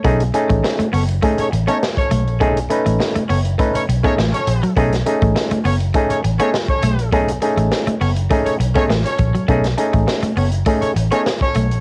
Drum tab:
HH |xxxx-xoxxxxx-xxx|xxxx-xoxxxxx-xxx|xxxx-xoxxxxx-xxx|xxxx-xoxxxxx-xxx|
SD |----o-------o---|----o-------o---|-o--o-------o---|----o-------o---|
BD |o--o----o----o--|o-------o--o----|o--o----o----o--|o-------o--o--o-|

HH |xxxx-xoxxxxx-xxx|
SD |-o--o-------o---|
BD |o--o----o----o--|